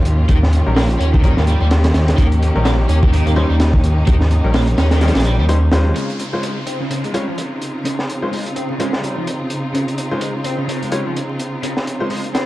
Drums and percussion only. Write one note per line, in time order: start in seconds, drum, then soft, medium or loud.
0.05 closed hi-hat medium
0.29 kick loud
0.29 closed hi-hat medium
0.43 snare medium
0.53 closed hi-hat medium
0.76 snare loud
0.76 open hi-hat medium
0.91 closed hi-hat soft
1.01 closed hi-hat medium
1.14 kick loud
1.24 kick loud
1.24 closed hi-hat medium
1.37 snare medium
1.47 closed hi-hat medium
1.71 snare loud
1.71 closed hi-hat medium
1.84 snare loud
1.84 closed hi-hat medium
1.94 snare loud
1.94 closed hi-hat medium
2.08 snare loud
2.08 closed hi-hat medium
2.18 kick loud
2.18 closed hi-hat medium
2.32 closed hi-hat soft
2.43 closed hi-hat medium
2.65 snare loud
2.65 closed hi-hat medium
2.89 closed hi-hat medium
3.03 kick loud
3.13 closed hi-hat medium
3.27 closed hi-hat soft
3.60 snare loud
3.60 closed hi-hat medium
3.74 kick medium
3.84 closed hi-hat medium
4.07 kick loud
4.07 closed hi-hat medium
4.21 snare medium
4.31 closed hi-hat medium
4.54 snare loud
4.54 open hi-hat medium
4.67 closed hi-hat soft
4.78 snare loud
4.78 closed hi-hat medium
4.91 snare loud
4.91 closed hi-hat medium
5.01 snare medium
5.01 closed hi-hat medium
5.08 snare medium
5.08 closed hi-hat medium
5.15 snare medium
5.15 closed hi-hat medium
5.20 snare medium
5.20 closed hi-hat medium
5.24 closed hi-hat medium
5.49 closed hi-hat medium
5.72 snare loud
5.72 closed hi-hat medium
5.96 closed hi-hat medium
6.10 closed hi-hat soft
6.19 closed hi-hat medium
6.43 closed hi-hat medium
6.67 closed hi-hat medium
6.91 closed hi-hat medium
7.04 closed hi-hat soft
7.14 closed hi-hat medium
7.38 closed hi-hat medium
7.62 closed hi-hat medium
7.85 closed hi-hat medium
7.99 snare medium
8.10 closed hi-hat medium
8.33 open hi-hat medium
8.46 closed hi-hat soft
8.56 closed hi-hat medium
8.80 closed hi-hat medium
8.93 snare medium
9.04 closed hi-hat medium
9.27 closed hi-hat medium
9.50 closed hi-hat medium
9.75 closed hi-hat medium
9.88 closed hi-hat soft
9.98 closed hi-hat medium
10.21 closed hi-hat medium
10.44 closed hi-hat medium
10.69 closed hi-hat medium
10.83 closed hi-hat soft
10.92 closed hi-hat medium
11.17 closed hi-hat medium
11.39 closed hi-hat medium
11.63 closed hi-hat medium
11.77 snare medium
11.87 closed hi-hat medium
12.10 open hi-hat medium
12.24 closed hi-hat soft
12.35 snare medium
12.35 closed hi-hat medium